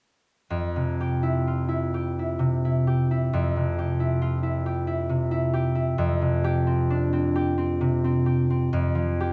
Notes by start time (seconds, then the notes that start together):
0.50 F2
0.76 C3
1.01 G4
1.23 E4
1.47 F4
1.69 E4
1.94 G4
2.19 E4
2.39 C3
2.65 E4
2.87 G4
3.11 E4
3.33 F2
3.56 C3
3.79 G4
4.00 E4
4.22 F4
4.43 E4
4.66 G4
4.87 E4
5.09 C3
5.31 E4
5.54 G4
5.75 E4
5.98 F2
6.22 C3
6.44 G4
6.67 C4
6.90 D4
7.13 C4
7.36 G4
7.58 C4
7.81 C3
8.04 C4
8.26 G4
8.50 C4
8.73 F2
8.95 F3
9.21 G4